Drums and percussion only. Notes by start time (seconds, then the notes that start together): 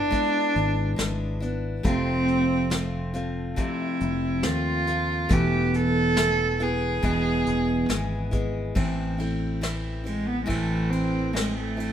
0.12 kick, closed hi-hat
0.56 closed hi-hat
0.99 snare, closed hi-hat
1.42 closed hi-hat
1.85 kick, closed hi-hat
2.28 closed hi-hat
2.71 snare, closed hi-hat
3.14 closed hi-hat
3.57 kick, closed hi-hat
4.01 closed hi-hat
4.43 snare, closed hi-hat
4.87 closed hi-hat
5.30 kick, closed hi-hat
5.74 closed hi-hat
6.17 snare, closed hi-hat
6.60 closed hi-hat
7.04 kick, closed hi-hat
7.46 closed hi-hat
7.90 snare, closed hi-hat
8.33 kick, closed hi-hat
8.76 kick, ride
9.20 ride
9.63 snare, ride
10.06 ride
10.49 kick, ride
10.92 ride
11.36 snare, ride
11.80 ride